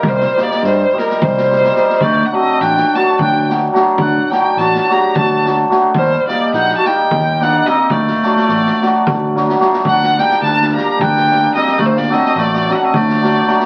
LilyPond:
<<
  \new Staff \with { instrumentName = "Violin" } { \time 7/8 \tempo 4 = 107 c''8 d''8 c''8 bes'8 c''4. | d''16. fis''32 ees''8 g''8 a''8 g''8 r4 | fis''8 g''8 a''8 bes''8 a''8 r4 | c''8 d''8 fis''16. a''32 g''4 fis''8 ees''8 |
d''2~ d''8 r4 | fis''8 g''8 a''8 bes''8 g''4 ees''8 | d''32 c''32 d''16 ees''8 d''8 ees''32 fis''32 ees''16 d''4. | }
  \new Staff \with { instrumentName = "Hammered dulcimer" } { \time 7/8 r8 <g c' ees' g'>8 r8 <g c' ees' g'>8 r8 <g c' ees' g'>8 <g c' ees' g'>8 | r8 <fis a d' fis'>8 r8 <fis a d' fis'>8 r8 <fis a d' fis'>8 <fis a d' fis'>8 | r8 <fis a d' fis'>8 r8 <fis a d' fis'>8 r8 <fis a d' fis'>8 <fis a d' fis'>8 | r8 <g bes ees' g'>8 r8 <g bes ees' g'>8 r8 <g bes ees' g'>8 <g bes ees' g'>8 |
r8 <fis a d' fis'>8 r8 <fis a d' fis'>8 r8 <fis a d' fis'>8 <fis a d' fis'>8 | r8 <g bes d' g'>8 r8 <g bes d' g'>8 r8 <g bes d' g'>8 <g bes d' g'>8 | r8 <fis a d' fis'>8 r8 <fis a d' fis'>8 r8 <fis a d' fis'>8 <fis a d' fis'>8 | }
  \new Staff \with { instrumentName = "Clarinet" } { \time 7/8 g8 bes8 g8 g8 g4. | a16. d'32 c'8 d'8 fis'8 d'8 r4 | d'8 ees'8 fis'8 g'8 fis'8 r4 | g8 bes8 ees'16. fis'32 ees'4 d'8 c'8 |
a2~ a8 r4 | d'8 ees'8 d'8 g'8 d'4 c'8 | a32 a32 bes16 c'8 a8 c'32 d'32 c'16 a4. | }
  \new Staff \with { instrumentName = "Fingered electric bass" } { \clef bass \time 7/8 c,8 r8 g,8 r8 c,4. | d,8 r8 a,,8 r8 d,4. | d,8 r8 a,,8 r8 d,4. | ees,8 r8 bes,,8 r8 ees,4. |
d,8 r8 a,,8 r8 d,4. | d,4 d,4 d,4. | d,4 a,,4 d,4. | }
  \new DrumStaff \with { instrumentName = "Drums" } \drummode { \time 7/8 bd16 sn16 sn16 sn16 sn8 sn16 sn16 bd16 sn16 sn16 sn16 sn16 sn16 | bd4 sn16 sn16 sn8 bd8 sn8 sn8 | bd8 sn8 sn16 sn16 sn8 bd8 sn8 sn8 | bd8 sn8 sn16 sn16 sn8 bd8 sn8 sn8 |
bd16 sn16 sn16 sn16 sn16 sn16 sn8 bd8 sn16 sn16 sn16 sn16 | bd16 sn16 sn16 sn16 sn16 sn16 sn8 bd16 sn16 sn8 sn16 sn16 | bd16 sn16 sn16 sn16 sn16 sn16 sn8 bd16 sn16 sn8 sn16 sn16 | }
>>